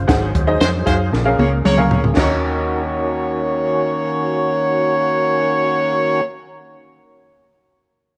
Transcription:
Already playing: C5
0.07 G#1 G#2 F#3 D#4 G#4 C5 F#5, kick, snare, closed hi-hat
0.35 D#2, kick, closed hi-hat
0.47 D#4 G#4 C5 D#5
0.60 F2 G#3 F#4 C5, snare, closed hi-hat
0.86 F#2 G#3 D#4 F#4 G#4 C5 F5, kick, closed hi-hat
1.12 A#1 A#2 C#3 A#3, snare
1.25 C#4 G#4 A#4 F5
1.38 C#2 A#3 G#4 C#5, high tom
1.64 C#2 A#3 G#4 C#5, mid tom
1.78 C#4 G#4 A#4 F5, mid tom
1.91 D2, floor tom
2.04 floor tom
2.15 D#2 D#3 A#3 C#4 F#4 A#4 C#5, kick, snare, crash
2.19 D#5

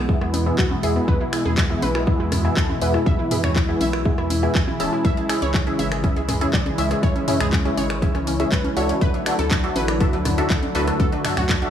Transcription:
Already playing: B1 B2 E3 G#3 E4
0.09 B3 E4 G#4 E5, kick
0.21 E2 B3, cross-stick
0.34 B3, open hi-hat, high conga
0.46 B3 E4 G#4 E5
0.58 E2 F#4, kick, clap
0.71 B3, high conga
0.83 E2 B3 E4 G#4 E5, open hi-hat
0.96 B3
1.08 E2 B4, kick, high conga
1.21 E4
1.33 B3 E4 G#4 E5, finger snap, open hi-hat
1.45 E2 G#4, high conga
1.58 E4, kick, clap
1.70 B3 E4 G#4 E5
1.82 B1 B4, open hi-hat, high conga
1.95 E4, finger snap, cross-stick
2.07 B3 E4 G#4 E5, kick
2.20 E2 E4
2.32 E4, cross-stick, mid tom, open hi-hat, high conga
2.45 B3 E4 G#4 E5
2.57 E2 A4, kick, clap
2.69 E4, high conga
2.81 E2 B3 E4 G#4 B4 E5, open hi-hat
2.94 E4, cross-stick
3.06 E2 E5, kick, high conga
3.19 E4
3.31 B3 E4 G#4 E5, mid tom, open hi-hat
3.44 E2 C#5, finger snap, mid tom, high conga
3.56 E4, kick, clap
3.69 B3 E4 G#4 E5
3.81 B1 E5, open hi-hat, high conga
3.93 E4, finger snap, cross-stick
4.05 B3 E4 G#4 E5, kick
4.18 E2 E4, cross-stick
4.30 E4, open hi-hat, high conga
4.43 B3 E4 G#4 E5
4.55 E2 G#5, kick, clap
4.68 E4, high conga
4.80 E1 C#4 E4 G#4 E5 A5, open hi-hat
4.93 E4
5.04 C#2 C#3 G#3 E5, kick, closed hi-hat, high conga
5.17 G#4, closed hi-hat
5.29 C#4 E4 G#4 E5, finger snap, open hi-hat
5.42 C#2 C#5, closed hi-hat, high conga
5.54 G#4, kick, clap, closed hi-hat
5.67 C#4 E4 G#4 E5, closed hi-hat
5.79 G#1 E5, open hi-hat, high conga
5.92 G#4, finger snap, cross-stick, closed hi-hat
6.04 C#4 E4 G#4 E5, kick, closed hi-hat
6.16 C#2 G#4, closed hi-hat
6.29 G#4, cross-stick, mid tom, open hi-hat, high conga
6.41 C#4 E4 G#4 E5, closed hi-hat
6.53 C#2 D5, kick, clap, closed hi-hat
6.66 G#4, closed hi-hat, high conga
6.78 C#2 C#4 E4 G#4 E5, open hi-hat
6.91 G#4, cross-stick, closed hi-hat
7.03 C#2 C#5, kick, closed hi-hat, high conga
7.16 C#4, closed hi-hat
7.28 C#4 E4 G#4 E5, mid tom, open hi-hat
7.40 C#2 G#4, finger snap, closed hi-hat, mid tom, high conga
7.53 C#4, kick, clap, closed hi-hat
7.65 C#4 E4 G#4 E5, closed hi-hat
7.77 G#1 C#5, open hi-hat, high conga
7.90 C#4, finger snap, cross-stick, closed hi-hat
8.02 C#4 E4 G#4 E5, kick, closed hi-hat
8.15 C#2 C#4, cross-stick, closed hi-hat
8.27 C#4, open hi-hat, high conga
8.40 C#4 E4 G#4 E5, closed hi-hat
8.52 C#2 B4, kick, clap, closed hi-hat
8.64 C#4, closed hi-hat, high conga
8.77 C#2 D4 F#4 A4 C#5 E5, open hi-hat
8.89 C#4, closed hi-hat
9.01 D2 D3 F#3 A3 E4 B4, kick, closed hi-hat, high conga
9.14 D4, closed hi-hat
9.26 D4 F#4 A4 E5, finger snap, open hi-hat
9.39 D2 A4, closed hi-hat, high conga
9.51 D4, kick, clap, closed hi-hat
9.64 D4 F#4 A4 E5, closed hi-hat
9.76 A1 B4, open hi-hat, high conga
9.88 D4, finger snap, cross-stick, closed hi-hat
10.00 D4 F#4 A4 E5, kick, closed hi-hat
10.13 D2 D4, closed hi-hat
10.25 D4, cross-stick, mid tom, open hi-hat, high conga
10.38 D4 F#4 A4 E5, closed hi-hat
10.50 D2 A4, kick, clap, closed hi-hat
10.63 D4, closed hi-hat, high conga
10.75 D2 D4 F#4 A4 B4 E5, open hi-hat
10.87 D4, cross-stick, closed hi-hat
11.00 D2 F#4 A4, kick, closed hi-hat, high conga
11.12 D4, closed hi-hat
11.25 D4 F#4 A4 E5, finger snap, mid tom, open hi-hat
11.37 D2 F#4, finger snap, mid tom, open hi-hat, high conga
11.49 D4, kick, clap, closed hi-hat
11.62 D4 F#4 A4 E5, closed hi-hat

